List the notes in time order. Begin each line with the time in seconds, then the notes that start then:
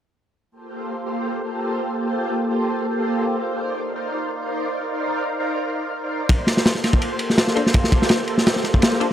6.29 kick, ride
6.47 snare, ride
6.57 snare
6.66 snare, ride
6.75 snare
6.84 snare, ride
6.93 kick
7.02 ride
7.19 ride
7.30 snare
7.38 snare, ride
7.47 snare
7.56 A#3 D4 F4 A4 C5, ride
7.66 snare
7.74 kick, ride
7.84 snare
7.92 kick, ride
8.02 snare
8.09 snare, ride
8.27 ride
8.38 snare
8.47 snare, ride
8.56 snare
8.64 snare, ride
8.74 kick
8.82 snare, ride
8.92 snare
9.00 A#3 D4 F4 A4 C5, ride